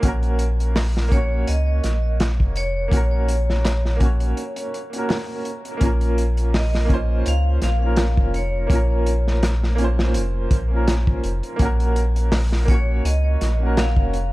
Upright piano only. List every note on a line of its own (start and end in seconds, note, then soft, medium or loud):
0.00 1.06 A#3 medium
0.00 1.07 C#4 medium
0.05 1.09 F#4 medium
0.05 1.10 A#4 loud
1.08 2.86 A#3 medium
1.08 2.88 C#4 medium
1.14 2.90 F#4 medium
1.14 2.91 C#5 loud
2.88 3.95 A#3 medium
2.88 3.96 C#4 medium
2.94 3.98 F#4 medium
2.94 3.99 A#4 loud
3.96 4.87 A#3 medium
3.96 4.88 C#4 medium
4.02 4.90 F#4 medium
4.02 4.91 C#5 loud
4.90 5.76 A#3 medium
4.90 5.77 C#4 medium
4.96 5.79 F#4 medium
4.96 5.80 A#4 medium
5.77 6.83 A#3 medium
5.77 6.85 C#4 medium
5.83 6.87 F4 medium
5.83 6.88 A#4 medium
6.85 7.76 A#3 medium
6.85 7.77 C#4 medium
6.91 7.79 F4 medium
6.91 7.80 C5 loud
7.78 8.64 A#3 medium
7.78 8.66 C#4 medium
7.83 8.67 F4 medium
7.83 8.69 A#4 medium
8.67 9.73 A#3 medium
8.67 9.75 C#4 medium
8.72 9.76 F4 medium
8.72 9.78 A#4 loud
9.75 10.66 A#3 medium
9.75 10.67 C#4 medium
9.81 10.69 F4 medium
9.81 10.70 C5 loud
10.68 11.54 A#3 medium
10.68 11.55 C#4 medium
10.74 11.57 F4 medium
10.74 11.58 A#4 medium
11.56 12.63 A#3 loud
11.56 12.64 C#4 medium
11.62 12.66 F#4 medium
11.62 12.67 A#4 loud
12.65 13.55 A#3 medium
12.65 13.56 C#4 medium
12.71 13.58 F#4 medium
12.71 13.59 C#5 loud
13.57 14.33 A#3 medium
13.57 14.33 C#4 medium
13.63 14.33 F#4 medium
13.63 14.33 A#4 medium